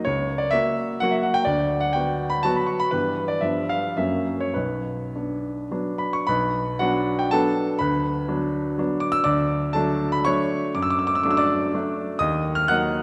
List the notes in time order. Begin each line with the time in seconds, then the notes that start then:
0.05 C#2 C#5
0.38 D5
0.51 A#3 F#4 E5
1.00 F#3 A#3 F#4 F#5
1.11 E5
1.23 F#5
1.34 G5
1.45 D2 D5
1.80 F#5
1.93 B3 F#4 G5
2.30 B5
2.43 F#3 B3 F#4 A5
2.56 B5
2.67 C#6
2.80 B5
2.91 G2 E3 B3 G4 B4
3.28 D5
3.41 G2 F3 B3 F4 E5
3.69 F5
3.97 F#2 F#3 A#3 C#4 E5
4.40 C#5
4.54 B1 B4
5.16 B3 D4
5.71 F#3 B3 D4
5.98 B5
6.13 C#6
6.27 B1 B4 B5
6.79 F#3 B3 D4 F#4 F#5
7.19 G5
7.31 F#3 B3 D4 A4 A5
7.79 D2 B4 B5
8.28 F#3 B3 D4
8.78 F#3 B3 D4
9.00 D6
9.12 E6
9.24 D2 D5 D6
9.73 F#3 A3 D4 A4 A5
10.12 B5
10.25 F#3 A3 D4 C#5 C#6
10.75 F#2 D6
10.82 E6
10.90 D6
10.99 E6
11.07 D6
11.15 E6
11.23 F#3 A3 D4 D6
11.31 E6
11.37 D5 D6
11.74 F#3 A3 D4
12.19 D#2 D#5 D#6
12.55 F6
12.68 F#3 A#3 D#4 F#5 F#6